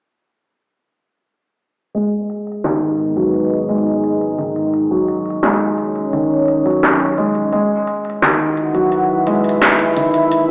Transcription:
1.94 G#3, closed hi-hat
2.01 G#4
2.30 closed hi-hat
2.47 D#5, closed hi-hat
2.52 closed hi-hat
2.59 B4
2.64 D#3, snare, closed hi-hat
2.82 closed hi-hat
2.99 closed hi-hat
3.17 F#3, closed hi-hat
3.34 closed hi-hat
3.69 G#3, closed hi-hat
3.86 closed hi-hat
3.91 closed hi-hat
4.04 closed hi-hat
4.21 closed hi-hat
4.38 D#3, closed hi-hat
4.56 closed hi-hat
4.73 closed hi-hat
4.91 F#3
5.08 closed hi-hat
5.26 closed hi-hat
5.30 closed hi-hat
5.34 C#5
5.43 G#3, snare, closed hi-hat
5.60 closed hi-hat
5.78 closed hi-hat
5.96 closed hi-hat
6.13 D#3, closed hi-hat
6.48 closed hi-hat
6.65 F#3, closed hi-hat
6.71 closed hi-hat
6.83 snare, closed hi-hat
6.86 closed hi-hat
6.89 closed hi-hat
6.91 closed hi-hat
6.94 closed hi-hat
6.96 closed hi-hat
6.98 closed hi-hat
7.00 closed hi-hat
7.18 G#3, closed hi-hat
7.35 closed hi-hat
7.53 G#3, closed hi-hat
7.70 E5
7.87 B5, closed hi-hat
7.95 F#5
8.05 closed hi-hat
8.10 closed hi-hat
8.22 D#3, snare, closed hi-hat
8.40 closed hi-hat
8.57 closed hi-hat
8.74 F#3, closed hi-hat
8.92 closed hi-hat
9.27 G#3, closed hi-hat
9.44 closed hi-hat
9.49 closed hi-hat
9.62 snare, closed hi-hat
9.79 closed hi-hat
9.97 D#3, closed hi-hat
10.14 closed hi-hat
10.24 G#5
10.32 closed hi-hat

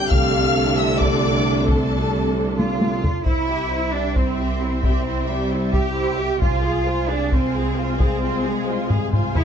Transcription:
Already playing: G4
0.10 C2 C3 D3 A3 D4 A4 F5 F6, taiko
0.78 E5 E6
1.00 D5 D6, taiko
1.68 A4 A5, taiko
2.59 F4, taiko high
2.81 taiko high
3.04 taiko low
3.25 C2 G3 C4 E4 C5 E5, taiko
3.48 G4 E5 G5
3.70 E4 C5 E5
3.93 D4 G4 E5 G5
4.16 C4 E4 C5 E5, taiko
4.38 G4 E5 G5
4.61 E4 C5 E5
4.83 C4 G4 E5 G5, taiko
5.04 E4 C5
5.08 E5
5.26 G3 G4 E5
5.31 G5
5.50 E4 C5 E5
5.73 G4 E5 G5, taiko
5.94 E4 C5 E5
6.16 G4 E5
6.21 G5
6.39 C2 G#3 C4 F4 C5, taiko
6.43 F4 G#5
6.62 G#4
6.67 F5
6.86 F4 C5 G#5
7.09 D4 G#4 F5
7.32 C4 F4 C5 G#5, taiko
7.55 G#4 F5
7.76 F4 C5 G#5
7.99 C4 G#4 F5, taiko
8.21 F4 C5 G#5
8.44 G#3 G#4 F5
8.65 F4 C5 G#5
8.89 G#4 F5, taiko low-mid
9.12 F4 C5 G#5, taiko low-mid
9.34 E4 G#4 F5, taiko low

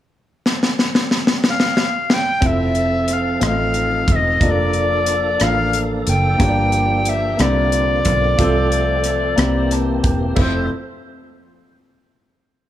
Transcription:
0.46 snare
0.63 snare
0.79 snare
0.95 snare
1.11 snare
1.27 snare
1.44 snare
1.49 F5
1.60 snare
1.77 snare
2.10 G5, snare
2.41 F1 F3 C4 E4 F4 A4 E5, kick, closed hi-hat
2.47 E5
2.75 closed hi-hat
3.08 cross-stick, closed hi-hat
3.13 F5
3.40 A1 A2 C4 D#4 F4 A4 D#5, cross-stick, closed hi-hat
3.46 F5
3.74 closed hi-hat
4.08 E1, kick, closed hi-hat
4.12 D#5 E5
4.40 F1 A#3 D4 F4 A4 D5, kick, closed hi-hat
4.46 D#5
4.51 D5
4.73 closed hi-hat
5.06 cross-stick, closed hi-hat
5.40 A1 A#3 D4 F4 A4 F5, cross-stick, closed hi-hat
5.44 F5
5.73 closed hi-hat
6.07 F#1 G5, closed hi-hat
6.38 G1 G2 A#3 D4 F4 G4 C#5, kick, closed hi-hat
6.48 D5
6.72 closed hi-hat
7.05 E5, closed hi-hat
7.37 C2 D3 A#3 C4 D4 E4 F4 G4 C5, cross-stick, closed hi-hat
7.42 F4 D5
7.72 closed hi-hat
8.05 B1, kick, closed hi-hat
8.38 C2 C3 F3 A3 F4 A4 C5, kick, closed hi-hat
8.72 closed hi-hat
9.04 cross-stick, closed hi-hat
9.36 C2 C3 E3 A#3 C4 E4 G4 C5, cross-stick, closed hi-hat
9.71 A5, cross-stick, closed hi-hat
10.04 E1 G5, kick, closed hi-hat
10.35 F1 F2 F3 A3 C4 E4 F4 A4 C5 E5, kick, crash
10.40 C5

